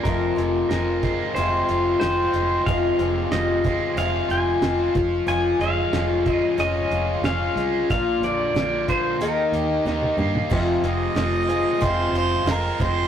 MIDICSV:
0, 0, Header, 1, 7, 480
1, 0, Start_track
1, 0, Key_signature, -4, "minor"
1, 0, Tempo, 653595
1, 35, Time_signature, 4, 2, 24, 8
1, 9604, End_track
2, 0, Start_track
2, 0, Title_t, "Pedal steel guitar"
2, 0, Program_c, 0, 26
2, 26, Note_on_c, 0, 70, 75
2, 498, Note_off_c, 0, 70, 0
2, 507, Note_on_c, 0, 70, 69
2, 989, Note_on_c, 0, 72, 79
2, 1007, Note_off_c, 0, 70, 0
2, 1444, Note_off_c, 0, 72, 0
2, 1466, Note_on_c, 0, 72, 83
2, 1923, Note_off_c, 0, 72, 0
2, 1956, Note_on_c, 0, 77, 89
2, 2434, Note_off_c, 0, 77, 0
2, 2437, Note_on_c, 0, 75, 83
2, 2923, Note_on_c, 0, 77, 98
2, 2932, Note_off_c, 0, 75, 0
2, 3164, Note_off_c, 0, 77, 0
2, 3167, Note_on_c, 0, 80, 84
2, 3614, Note_off_c, 0, 80, 0
2, 3878, Note_on_c, 0, 80, 97
2, 4102, Note_off_c, 0, 80, 0
2, 4121, Note_on_c, 0, 77, 91
2, 4643, Note_off_c, 0, 77, 0
2, 4643, Note_on_c, 0, 75, 91
2, 4846, Note_off_c, 0, 75, 0
2, 4846, Note_on_c, 0, 75, 90
2, 5323, Note_off_c, 0, 75, 0
2, 5326, Note_on_c, 0, 77, 94
2, 5773, Note_off_c, 0, 77, 0
2, 5806, Note_on_c, 0, 77, 88
2, 6050, Note_off_c, 0, 77, 0
2, 6052, Note_on_c, 0, 74, 88
2, 6497, Note_off_c, 0, 74, 0
2, 6531, Note_on_c, 0, 72, 74
2, 6768, Note_on_c, 0, 70, 69
2, 6772, Note_off_c, 0, 72, 0
2, 7454, Note_off_c, 0, 70, 0
2, 9604, End_track
3, 0, Start_track
3, 0, Title_t, "Harmonica"
3, 0, Program_c, 1, 22
3, 7973, Note_on_c, 1, 75, 86
3, 8695, Note_on_c, 1, 72, 83
3, 8706, Note_off_c, 1, 75, 0
3, 8920, Note_off_c, 1, 72, 0
3, 8943, Note_on_c, 1, 72, 86
3, 9164, Note_off_c, 1, 72, 0
3, 9182, Note_on_c, 1, 70, 76
3, 9403, Note_off_c, 1, 70, 0
3, 9413, Note_on_c, 1, 72, 98
3, 9604, Note_off_c, 1, 72, 0
3, 9604, End_track
4, 0, Start_track
4, 0, Title_t, "Twelve-string acoustic guitar"
4, 0, Program_c, 2, 25
4, 37, Note_on_c, 2, 48, 64
4, 38, Note_on_c, 2, 41, 63
4, 42, Note_on_c, 2, 56, 78
4, 43, Note_on_c, 2, 53, 69
4, 44, Note_on_c, 2, 60, 69
4, 44, Note_on_c, 2, 65, 78
4, 253, Note_off_c, 2, 65, 0
4, 257, Note_off_c, 2, 60, 0
4, 262, Note_on_c, 2, 65, 47
4, 265, Note_off_c, 2, 56, 0
4, 266, Note_on_c, 2, 60, 44
4, 267, Note_off_c, 2, 53, 0
4, 274, Note_on_c, 2, 56, 41
4, 276, Note_off_c, 2, 48, 0
4, 276, Note_on_c, 2, 53, 38
4, 277, Note_off_c, 2, 41, 0
4, 508, Note_off_c, 2, 53, 0
4, 509, Note_off_c, 2, 65, 0
4, 511, Note_off_c, 2, 56, 0
4, 511, Note_off_c, 2, 60, 0
4, 517, Note_on_c, 2, 53, 55
4, 520, Note_on_c, 2, 56, 58
4, 527, Note_on_c, 2, 60, 57
4, 527, Note_on_c, 2, 65, 59
4, 999, Note_off_c, 2, 60, 0
4, 1001, Note_on_c, 2, 41, 72
4, 1002, Note_off_c, 2, 53, 0
4, 1003, Note_on_c, 2, 48, 72
4, 1004, Note_on_c, 2, 53, 78
4, 1005, Note_off_c, 2, 56, 0
4, 1007, Note_off_c, 2, 65, 0
4, 1008, Note_on_c, 2, 56, 78
4, 1008, Note_on_c, 2, 60, 86
4, 1010, Note_on_c, 2, 65, 75
4, 1479, Note_off_c, 2, 41, 0
4, 1480, Note_off_c, 2, 48, 0
4, 1481, Note_off_c, 2, 53, 0
4, 1483, Note_off_c, 2, 60, 0
4, 1484, Note_off_c, 2, 56, 0
4, 1484, Note_on_c, 2, 53, 58
4, 1486, Note_on_c, 2, 56, 54
4, 1490, Note_off_c, 2, 65, 0
4, 1493, Note_on_c, 2, 60, 67
4, 1493, Note_on_c, 2, 65, 64
4, 1965, Note_off_c, 2, 60, 0
4, 1966, Note_off_c, 2, 53, 0
4, 1968, Note_off_c, 2, 56, 0
4, 1968, Note_on_c, 2, 41, 74
4, 1968, Note_on_c, 2, 48, 69
4, 1969, Note_on_c, 2, 53, 69
4, 1971, Note_on_c, 2, 56, 68
4, 1972, Note_off_c, 2, 65, 0
4, 1974, Note_on_c, 2, 60, 74
4, 1975, Note_on_c, 2, 65, 78
4, 2194, Note_off_c, 2, 65, 0
4, 2200, Note_off_c, 2, 60, 0
4, 2203, Note_off_c, 2, 41, 0
4, 2203, Note_off_c, 2, 48, 0
4, 2203, Note_off_c, 2, 53, 0
4, 2203, Note_on_c, 2, 65, 44
4, 2204, Note_off_c, 2, 56, 0
4, 2209, Note_on_c, 2, 60, 48
4, 2215, Note_on_c, 2, 56, 39
4, 2223, Note_on_c, 2, 53, 40
4, 2426, Note_off_c, 2, 53, 0
4, 2430, Note_off_c, 2, 56, 0
4, 2434, Note_off_c, 2, 60, 0
4, 2435, Note_on_c, 2, 53, 58
4, 2438, Note_off_c, 2, 65, 0
4, 2439, Note_on_c, 2, 56, 53
4, 2442, Note_on_c, 2, 60, 62
4, 2446, Note_on_c, 2, 65, 64
4, 2667, Note_off_c, 2, 65, 0
4, 2673, Note_off_c, 2, 60, 0
4, 2675, Note_on_c, 2, 65, 45
4, 2676, Note_off_c, 2, 56, 0
4, 2677, Note_off_c, 2, 53, 0
4, 2682, Note_on_c, 2, 60, 41
4, 2685, Note_on_c, 2, 56, 39
4, 2690, Note_on_c, 2, 53, 36
4, 2912, Note_off_c, 2, 56, 0
4, 2913, Note_off_c, 2, 53, 0
4, 2914, Note_off_c, 2, 60, 0
4, 2917, Note_off_c, 2, 65, 0
4, 2917, Note_on_c, 2, 48, 79
4, 2919, Note_on_c, 2, 41, 71
4, 2920, Note_on_c, 2, 56, 85
4, 2922, Note_on_c, 2, 53, 75
4, 2923, Note_on_c, 2, 60, 77
4, 2928, Note_on_c, 2, 65, 83
4, 3388, Note_off_c, 2, 56, 0
4, 3389, Note_off_c, 2, 53, 0
4, 3392, Note_on_c, 2, 53, 59
4, 3396, Note_off_c, 2, 60, 0
4, 3397, Note_on_c, 2, 56, 61
4, 3398, Note_off_c, 2, 48, 0
4, 3399, Note_off_c, 2, 41, 0
4, 3403, Note_off_c, 2, 65, 0
4, 3404, Note_on_c, 2, 60, 59
4, 3406, Note_on_c, 2, 65, 72
4, 3624, Note_off_c, 2, 65, 0
4, 3632, Note_on_c, 2, 65, 45
4, 3636, Note_off_c, 2, 53, 0
4, 3636, Note_off_c, 2, 56, 0
4, 3636, Note_off_c, 2, 60, 0
4, 3639, Note_on_c, 2, 61, 38
4, 3645, Note_on_c, 2, 56, 36
4, 3865, Note_off_c, 2, 56, 0
4, 3867, Note_off_c, 2, 61, 0
4, 3867, Note_on_c, 2, 53, 72
4, 3872, Note_off_c, 2, 65, 0
4, 3873, Note_on_c, 2, 56, 73
4, 3875, Note_on_c, 2, 61, 74
4, 3881, Note_on_c, 2, 65, 86
4, 4110, Note_off_c, 2, 65, 0
4, 4113, Note_off_c, 2, 53, 0
4, 4114, Note_off_c, 2, 61, 0
4, 4116, Note_off_c, 2, 56, 0
4, 4119, Note_on_c, 2, 65, 54
4, 4123, Note_on_c, 2, 61, 42
4, 4129, Note_on_c, 2, 56, 40
4, 4353, Note_off_c, 2, 56, 0
4, 4354, Note_off_c, 2, 61, 0
4, 4355, Note_on_c, 2, 53, 59
4, 4359, Note_off_c, 2, 65, 0
4, 4361, Note_on_c, 2, 56, 62
4, 4363, Note_on_c, 2, 61, 64
4, 4368, Note_on_c, 2, 65, 64
4, 4821, Note_off_c, 2, 53, 0
4, 4826, Note_off_c, 2, 56, 0
4, 4830, Note_on_c, 2, 53, 75
4, 4832, Note_off_c, 2, 61, 0
4, 4832, Note_off_c, 2, 65, 0
4, 4835, Note_on_c, 2, 56, 72
4, 4840, Note_on_c, 2, 61, 89
4, 4841, Note_on_c, 2, 65, 83
4, 5311, Note_off_c, 2, 53, 0
4, 5317, Note_off_c, 2, 56, 0
4, 5319, Note_on_c, 2, 53, 53
4, 5320, Note_off_c, 2, 61, 0
4, 5320, Note_off_c, 2, 65, 0
4, 5326, Note_on_c, 2, 56, 56
4, 5333, Note_on_c, 2, 61, 61
4, 5337, Note_on_c, 2, 65, 67
4, 5799, Note_off_c, 2, 53, 0
4, 5802, Note_off_c, 2, 65, 0
4, 5803, Note_off_c, 2, 56, 0
4, 5806, Note_off_c, 2, 61, 0
4, 5807, Note_on_c, 2, 46, 63
4, 5811, Note_on_c, 2, 53, 73
4, 5811, Note_on_c, 2, 65, 80
4, 5812, Note_on_c, 2, 58, 76
4, 5814, Note_on_c, 2, 62, 75
4, 6037, Note_off_c, 2, 65, 0
4, 6041, Note_off_c, 2, 62, 0
4, 6043, Note_off_c, 2, 46, 0
4, 6045, Note_off_c, 2, 53, 0
4, 6045, Note_on_c, 2, 65, 43
4, 6046, Note_off_c, 2, 58, 0
4, 6050, Note_on_c, 2, 62, 44
4, 6057, Note_on_c, 2, 58, 40
4, 6275, Note_off_c, 2, 58, 0
4, 6277, Note_on_c, 2, 53, 61
4, 6278, Note_off_c, 2, 62, 0
4, 6282, Note_off_c, 2, 65, 0
4, 6284, Note_on_c, 2, 58, 59
4, 6286, Note_on_c, 2, 62, 58
4, 6291, Note_on_c, 2, 65, 61
4, 6512, Note_off_c, 2, 65, 0
4, 6518, Note_off_c, 2, 53, 0
4, 6519, Note_off_c, 2, 62, 0
4, 6521, Note_on_c, 2, 65, 41
4, 6522, Note_off_c, 2, 58, 0
4, 6528, Note_on_c, 2, 62, 42
4, 6532, Note_on_c, 2, 58, 39
4, 6757, Note_off_c, 2, 58, 0
4, 6760, Note_off_c, 2, 65, 0
4, 6761, Note_on_c, 2, 51, 79
4, 6764, Note_off_c, 2, 62, 0
4, 6766, Note_on_c, 2, 58, 80
4, 6768, Note_on_c, 2, 63, 79
4, 6769, Note_on_c, 2, 67, 79
4, 7229, Note_off_c, 2, 51, 0
4, 7232, Note_off_c, 2, 58, 0
4, 7238, Note_on_c, 2, 51, 55
4, 7241, Note_off_c, 2, 63, 0
4, 7241, Note_off_c, 2, 67, 0
4, 7241, Note_on_c, 2, 58, 58
4, 7250, Note_on_c, 2, 63, 56
4, 7250, Note_on_c, 2, 67, 63
4, 7465, Note_off_c, 2, 67, 0
4, 7471, Note_off_c, 2, 63, 0
4, 7474, Note_on_c, 2, 67, 48
4, 7476, Note_off_c, 2, 58, 0
4, 7479, Note_off_c, 2, 51, 0
4, 7480, Note_on_c, 2, 63, 42
4, 7485, Note_on_c, 2, 58, 38
4, 7709, Note_on_c, 2, 41, 77
4, 7714, Note_on_c, 2, 53, 80
4, 7716, Note_off_c, 2, 63, 0
4, 7716, Note_on_c, 2, 48, 78
4, 7717, Note_off_c, 2, 58, 0
4, 7717, Note_off_c, 2, 67, 0
4, 7719, Note_on_c, 2, 60, 81
4, 7720, Note_on_c, 2, 56, 86
4, 7723, Note_on_c, 2, 65, 88
4, 7946, Note_off_c, 2, 65, 0
4, 7952, Note_off_c, 2, 60, 0
4, 7954, Note_off_c, 2, 41, 0
4, 7955, Note_on_c, 2, 65, 45
4, 7957, Note_off_c, 2, 53, 0
4, 7958, Note_off_c, 2, 48, 0
4, 7959, Note_off_c, 2, 56, 0
4, 7961, Note_on_c, 2, 60, 45
4, 7967, Note_on_c, 2, 56, 39
4, 7968, Note_on_c, 2, 53, 42
4, 8180, Note_off_c, 2, 53, 0
4, 8189, Note_off_c, 2, 56, 0
4, 8189, Note_on_c, 2, 53, 57
4, 8194, Note_off_c, 2, 60, 0
4, 8197, Note_off_c, 2, 65, 0
4, 8198, Note_on_c, 2, 56, 55
4, 8203, Note_on_c, 2, 60, 63
4, 8205, Note_on_c, 2, 65, 66
4, 8416, Note_off_c, 2, 65, 0
4, 8425, Note_off_c, 2, 56, 0
4, 8425, Note_on_c, 2, 65, 50
4, 8426, Note_off_c, 2, 60, 0
4, 8434, Note_off_c, 2, 53, 0
4, 8434, Note_on_c, 2, 56, 39
4, 8435, Note_on_c, 2, 60, 42
4, 8443, Note_on_c, 2, 53, 37
4, 8666, Note_off_c, 2, 56, 0
4, 8668, Note_off_c, 2, 53, 0
4, 8669, Note_off_c, 2, 60, 0
4, 8669, Note_off_c, 2, 65, 0
4, 8670, Note_on_c, 2, 41, 70
4, 8670, Note_on_c, 2, 48, 77
4, 8675, Note_on_c, 2, 56, 84
4, 8677, Note_on_c, 2, 53, 84
4, 8678, Note_on_c, 2, 60, 82
4, 8678, Note_on_c, 2, 65, 84
4, 9145, Note_off_c, 2, 53, 0
4, 9148, Note_on_c, 2, 53, 61
4, 9149, Note_off_c, 2, 56, 0
4, 9150, Note_off_c, 2, 60, 0
4, 9152, Note_on_c, 2, 56, 60
4, 9154, Note_off_c, 2, 41, 0
4, 9154, Note_off_c, 2, 48, 0
4, 9158, Note_off_c, 2, 65, 0
4, 9158, Note_on_c, 2, 60, 67
4, 9161, Note_on_c, 2, 65, 68
4, 9383, Note_off_c, 2, 65, 0
4, 9392, Note_off_c, 2, 56, 0
4, 9392, Note_off_c, 2, 60, 0
4, 9392, Note_on_c, 2, 65, 50
4, 9393, Note_off_c, 2, 53, 0
4, 9401, Note_on_c, 2, 56, 44
4, 9401, Note_on_c, 2, 60, 42
4, 9408, Note_on_c, 2, 53, 38
4, 9604, Note_off_c, 2, 53, 0
4, 9604, Note_off_c, 2, 56, 0
4, 9604, Note_off_c, 2, 60, 0
4, 9604, Note_off_c, 2, 65, 0
4, 9604, End_track
5, 0, Start_track
5, 0, Title_t, "Overdriven electric guitar"
5, 0, Program_c, 3, 29
5, 0, Note_on_c, 3, 65, 61
5, 276, Note_on_c, 3, 48, 60
5, 757, Note_on_c, 3, 56, 62
5, 1237, Note_off_c, 3, 65, 0
5, 1240, Note_on_c, 3, 65, 61
5, 1477, Note_off_c, 3, 48, 0
5, 1720, Note_off_c, 3, 56, 0
5, 1723, Note_on_c, 3, 56, 63
5, 2200, Note_on_c, 3, 48, 62
5, 2679, Note_off_c, 3, 56, 0
5, 3146, Note_off_c, 3, 65, 0
5, 3149, Note_on_c, 3, 65, 68
5, 3400, Note_off_c, 3, 48, 0
5, 3630, Note_on_c, 3, 53, 61
5, 3866, Note_off_c, 3, 53, 0
5, 4599, Note_on_c, 3, 56, 64
5, 5083, Note_off_c, 3, 65, 0
5, 5086, Note_on_c, 3, 65, 62
5, 5549, Note_off_c, 3, 56, 0
5, 5558, Note_on_c, 3, 56, 64
5, 5799, Note_off_c, 3, 56, 0
5, 5803, Note_off_c, 3, 65, 0
5, 6041, Note_on_c, 3, 50, 59
5, 6275, Note_off_c, 3, 50, 0
5, 6283, Note_on_c, 3, 50, 60
5, 6761, Note_off_c, 3, 50, 0
5, 7008, Note_on_c, 3, 67, 62
5, 7723, Note_off_c, 3, 67, 0
5, 7956, Note_on_c, 3, 48, 65
5, 8927, Note_on_c, 3, 65, 67
5, 9157, Note_off_c, 3, 48, 0
5, 9604, Note_off_c, 3, 65, 0
5, 9604, End_track
6, 0, Start_track
6, 0, Title_t, "Fingered electric bass"
6, 0, Program_c, 4, 33
6, 35, Note_on_c, 4, 29, 88
6, 215, Note_off_c, 4, 29, 0
6, 271, Note_on_c, 4, 29, 74
6, 453, Note_off_c, 4, 29, 0
6, 515, Note_on_c, 4, 29, 75
6, 876, Note_off_c, 4, 29, 0
6, 1000, Note_on_c, 4, 29, 79
6, 1179, Note_off_c, 4, 29, 0
6, 1242, Note_on_c, 4, 29, 72
6, 1420, Note_off_c, 4, 29, 0
6, 1479, Note_on_c, 4, 29, 79
6, 1659, Note_off_c, 4, 29, 0
6, 1716, Note_on_c, 4, 29, 77
6, 1897, Note_off_c, 4, 29, 0
6, 1954, Note_on_c, 4, 29, 81
6, 2136, Note_off_c, 4, 29, 0
6, 2196, Note_on_c, 4, 29, 76
6, 2377, Note_off_c, 4, 29, 0
6, 2433, Note_on_c, 4, 29, 77
6, 2795, Note_off_c, 4, 29, 0
6, 2906, Note_on_c, 4, 29, 81
6, 3091, Note_off_c, 4, 29, 0
6, 3148, Note_on_c, 4, 29, 81
6, 3332, Note_off_c, 4, 29, 0
6, 3386, Note_on_c, 4, 29, 78
6, 3571, Note_off_c, 4, 29, 0
6, 3632, Note_on_c, 4, 29, 80
6, 3815, Note_off_c, 4, 29, 0
6, 3866, Note_on_c, 4, 29, 88
6, 4051, Note_off_c, 4, 29, 0
6, 4107, Note_on_c, 4, 29, 78
6, 4292, Note_off_c, 4, 29, 0
6, 4352, Note_on_c, 4, 29, 82
6, 4715, Note_off_c, 4, 29, 0
6, 4833, Note_on_c, 4, 29, 75
6, 5016, Note_off_c, 4, 29, 0
6, 5071, Note_on_c, 4, 29, 77
6, 5255, Note_off_c, 4, 29, 0
6, 5299, Note_on_c, 4, 29, 80
6, 5487, Note_off_c, 4, 29, 0
6, 5550, Note_on_c, 4, 36, 84
6, 5734, Note_off_c, 4, 36, 0
6, 5803, Note_on_c, 4, 34, 84
6, 5982, Note_off_c, 4, 34, 0
6, 6024, Note_on_c, 4, 34, 74
6, 6210, Note_off_c, 4, 34, 0
6, 6272, Note_on_c, 4, 34, 81
6, 6748, Note_off_c, 4, 34, 0
6, 6748, Note_on_c, 4, 39, 78
6, 6932, Note_off_c, 4, 39, 0
6, 6992, Note_on_c, 4, 39, 77
6, 7175, Note_off_c, 4, 39, 0
6, 7235, Note_on_c, 4, 39, 75
6, 7417, Note_off_c, 4, 39, 0
6, 7468, Note_on_c, 4, 43, 82
6, 7652, Note_off_c, 4, 43, 0
6, 7718, Note_on_c, 4, 29, 88
6, 7899, Note_off_c, 4, 29, 0
6, 7945, Note_on_c, 4, 29, 78
6, 8130, Note_off_c, 4, 29, 0
6, 8188, Note_on_c, 4, 29, 77
6, 8553, Note_off_c, 4, 29, 0
6, 8674, Note_on_c, 4, 29, 77
6, 8856, Note_off_c, 4, 29, 0
6, 8896, Note_on_c, 4, 29, 80
6, 9084, Note_off_c, 4, 29, 0
6, 9139, Note_on_c, 4, 29, 76
6, 9326, Note_off_c, 4, 29, 0
6, 9398, Note_on_c, 4, 29, 82
6, 9578, Note_off_c, 4, 29, 0
6, 9604, End_track
7, 0, Start_track
7, 0, Title_t, "Drums"
7, 37, Note_on_c, 9, 42, 73
7, 38, Note_on_c, 9, 36, 101
7, 111, Note_off_c, 9, 42, 0
7, 112, Note_off_c, 9, 36, 0
7, 282, Note_on_c, 9, 42, 51
7, 356, Note_off_c, 9, 42, 0
7, 519, Note_on_c, 9, 42, 67
7, 520, Note_on_c, 9, 38, 90
7, 593, Note_off_c, 9, 42, 0
7, 594, Note_off_c, 9, 38, 0
7, 755, Note_on_c, 9, 42, 56
7, 757, Note_on_c, 9, 36, 73
7, 829, Note_off_c, 9, 42, 0
7, 831, Note_off_c, 9, 36, 0
7, 999, Note_on_c, 9, 42, 72
7, 1072, Note_off_c, 9, 42, 0
7, 1238, Note_on_c, 9, 42, 55
7, 1311, Note_off_c, 9, 42, 0
7, 1477, Note_on_c, 9, 42, 74
7, 1478, Note_on_c, 9, 38, 92
7, 1551, Note_off_c, 9, 38, 0
7, 1551, Note_off_c, 9, 42, 0
7, 1715, Note_on_c, 9, 42, 58
7, 1789, Note_off_c, 9, 42, 0
7, 1957, Note_on_c, 9, 42, 79
7, 1958, Note_on_c, 9, 36, 96
7, 2030, Note_off_c, 9, 42, 0
7, 2032, Note_off_c, 9, 36, 0
7, 2197, Note_on_c, 9, 42, 57
7, 2270, Note_off_c, 9, 42, 0
7, 2436, Note_on_c, 9, 42, 75
7, 2437, Note_on_c, 9, 38, 95
7, 2510, Note_off_c, 9, 38, 0
7, 2510, Note_off_c, 9, 42, 0
7, 2675, Note_on_c, 9, 42, 54
7, 2679, Note_on_c, 9, 36, 74
7, 2749, Note_off_c, 9, 42, 0
7, 2753, Note_off_c, 9, 36, 0
7, 2918, Note_on_c, 9, 42, 67
7, 2991, Note_off_c, 9, 42, 0
7, 3158, Note_on_c, 9, 42, 52
7, 3232, Note_off_c, 9, 42, 0
7, 3394, Note_on_c, 9, 42, 70
7, 3395, Note_on_c, 9, 38, 93
7, 3467, Note_off_c, 9, 42, 0
7, 3468, Note_off_c, 9, 38, 0
7, 3635, Note_on_c, 9, 42, 57
7, 3638, Note_on_c, 9, 36, 87
7, 3709, Note_off_c, 9, 42, 0
7, 3711, Note_off_c, 9, 36, 0
7, 3878, Note_on_c, 9, 42, 76
7, 3952, Note_off_c, 9, 42, 0
7, 4117, Note_on_c, 9, 42, 49
7, 4190, Note_off_c, 9, 42, 0
7, 4356, Note_on_c, 9, 42, 69
7, 4357, Note_on_c, 9, 38, 97
7, 4430, Note_off_c, 9, 38, 0
7, 4430, Note_off_c, 9, 42, 0
7, 4596, Note_on_c, 9, 42, 54
7, 4599, Note_on_c, 9, 36, 74
7, 4670, Note_off_c, 9, 42, 0
7, 4672, Note_off_c, 9, 36, 0
7, 4842, Note_on_c, 9, 42, 69
7, 4915, Note_off_c, 9, 42, 0
7, 5078, Note_on_c, 9, 42, 56
7, 5151, Note_off_c, 9, 42, 0
7, 5317, Note_on_c, 9, 42, 71
7, 5318, Note_on_c, 9, 38, 96
7, 5391, Note_off_c, 9, 42, 0
7, 5392, Note_off_c, 9, 38, 0
7, 5562, Note_on_c, 9, 42, 60
7, 5635, Note_off_c, 9, 42, 0
7, 5803, Note_on_c, 9, 42, 81
7, 5804, Note_on_c, 9, 36, 100
7, 5876, Note_off_c, 9, 42, 0
7, 5877, Note_off_c, 9, 36, 0
7, 6046, Note_on_c, 9, 42, 59
7, 6119, Note_off_c, 9, 42, 0
7, 6289, Note_on_c, 9, 38, 98
7, 6289, Note_on_c, 9, 42, 81
7, 6362, Note_off_c, 9, 42, 0
7, 6363, Note_off_c, 9, 38, 0
7, 6524, Note_on_c, 9, 42, 57
7, 6525, Note_on_c, 9, 36, 69
7, 6598, Note_off_c, 9, 36, 0
7, 6598, Note_off_c, 9, 42, 0
7, 6767, Note_on_c, 9, 42, 80
7, 6840, Note_off_c, 9, 42, 0
7, 7002, Note_on_c, 9, 42, 54
7, 7076, Note_off_c, 9, 42, 0
7, 7247, Note_on_c, 9, 38, 50
7, 7320, Note_off_c, 9, 38, 0
7, 7361, Note_on_c, 9, 48, 52
7, 7435, Note_off_c, 9, 48, 0
7, 7481, Note_on_c, 9, 45, 77
7, 7555, Note_off_c, 9, 45, 0
7, 7601, Note_on_c, 9, 43, 74
7, 7674, Note_off_c, 9, 43, 0
7, 7720, Note_on_c, 9, 49, 103
7, 7721, Note_on_c, 9, 36, 102
7, 7793, Note_off_c, 9, 49, 0
7, 7794, Note_off_c, 9, 36, 0
7, 7959, Note_on_c, 9, 42, 61
7, 8033, Note_off_c, 9, 42, 0
7, 8198, Note_on_c, 9, 42, 76
7, 8199, Note_on_c, 9, 38, 96
7, 8272, Note_off_c, 9, 38, 0
7, 8272, Note_off_c, 9, 42, 0
7, 8441, Note_on_c, 9, 42, 58
7, 8515, Note_off_c, 9, 42, 0
7, 8679, Note_on_c, 9, 36, 71
7, 8681, Note_on_c, 9, 42, 79
7, 8753, Note_off_c, 9, 36, 0
7, 8754, Note_off_c, 9, 42, 0
7, 8923, Note_on_c, 9, 42, 60
7, 8996, Note_off_c, 9, 42, 0
7, 9161, Note_on_c, 9, 38, 99
7, 9161, Note_on_c, 9, 42, 85
7, 9234, Note_off_c, 9, 42, 0
7, 9235, Note_off_c, 9, 38, 0
7, 9400, Note_on_c, 9, 36, 76
7, 9401, Note_on_c, 9, 42, 64
7, 9473, Note_off_c, 9, 36, 0
7, 9475, Note_off_c, 9, 42, 0
7, 9604, End_track
0, 0, End_of_file